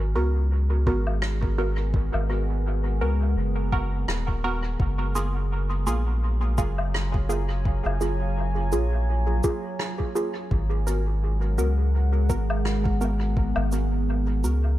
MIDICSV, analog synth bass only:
0, 0, Header, 1, 2, 480
1, 0, Start_track
1, 0, Tempo, 714286
1, 1303, Time_signature, 4, 2, 24, 8
1, 9938, End_track
2, 0, Start_track
2, 0, Title_t, "Analog synth bass"
2, 0, Program_c, 0, 38
2, 0, Note_on_c, 0, 32, 94
2, 102, Note_on_c, 0, 37, 86
2, 113, Note_off_c, 0, 32, 0
2, 583, Note_on_c, 0, 32, 83
2, 593, Note_off_c, 0, 37, 0
2, 1412, Note_off_c, 0, 32, 0
2, 1440, Note_on_c, 0, 32, 94
2, 2023, Note_on_c, 0, 37, 83
2, 2033, Note_off_c, 0, 32, 0
2, 2260, Note_off_c, 0, 37, 0
2, 2264, Note_on_c, 0, 30, 95
2, 2724, Note_off_c, 0, 30, 0
2, 2744, Note_on_c, 0, 27, 92
2, 3204, Note_off_c, 0, 27, 0
2, 3223, Note_on_c, 0, 30, 96
2, 3942, Note_on_c, 0, 34, 86
2, 3952, Note_off_c, 0, 30, 0
2, 4424, Note_on_c, 0, 30, 82
2, 4434, Note_off_c, 0, 34, 0
2, 5253, Note_off_c, 0, 30, 0
2, 5280, Note_on_c, 0, 30, 94
2, 5865, Note_on_c, 0, 34, 88
2, 5875, Note_off_c, 0, 30, 0
2, 6324, Note_off_c, 0, 34, 0
2, 7064, Note_on_c, 0, 32, 98
2, 7783, Note_on_c, 0, 37, 88
2, 7793, Note_off_c, 0, 32, 0
2, 8263, Note_on_c, 0, 32, 82
2, 8273, Note_off_c, 0, 37, 0
2, 9092, Note_off_c, 0, 32, 0
2, 9117, Note_on_c, 0, 32, 97
2, 9703, Note_on_c, 0, 37, 86
2, 9713, Note_off_c, 0, 32, 0
2, 9938, Note_off_c, 0, 37, 0
2, 9938, End_track
0, 0, End_of_file